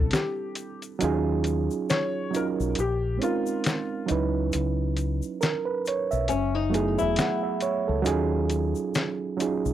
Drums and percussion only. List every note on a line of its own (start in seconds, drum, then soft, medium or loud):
0.11 snare loud
0.11 closed hi-hat medium
0.11 shaker medium
0.55 closed hi-hat medium
0.55 shaker soft
0.82 closed hi-hat soft
0.82 shaker soft
1.01 closed hi-hat medium
1.01 shaker medium
1.44 closed hi-hat medium
1.44 shaker soft
1.71 shaker soft
1.90 snare loud
1.90 closed hi-hat medium
1.90 shaker medium
2.34 closed hi-hat medium
2.34 shaker medium
2.60 shaker soft
2.75 closed hi-hat medium
2.75 shaker medium
3.22 closed hi-hat medium
3.22 shaker soft
3.46 shaker medium
3.64 snare loud
3.64 closed hi-hat medium
3.64 shaker medium
4.08 closed hi-hat medium
4.08 shaker soft
4.52 closed hi-hat medium
4.52 shaker medium
4.97 closed hi-hat medium
4.97 shaker soft
5.22 shaker soft
5.42 snare loud
5.42 closed hi-hat medium
5.42 shaker medium
5.86 closed hi-hat medium
5.86 shaker medium
6.11 shaker medium
6.28 closed hi-hat medium
6.28 shaker medium
6.74 closed hi-hat medium
6.74 shaker soft
6.99 shaker medium
7.16 snare loud
7.16 closed hi-hat medium
7.16 shaker medium
7.61 closed hi-hat medium
7.61 shaker soft
8.05 closed hi-hat medium
8.05 shaker medium
8.50 closed hi-hat medium
8.50 shaker soft
8.75 shaker soft
8.95 snare loud
8.95 closed hi-hat medium
8.95 shaker medium
9.40 closed hi-hat medium
9.40 shaker medium
9.66 shaker soft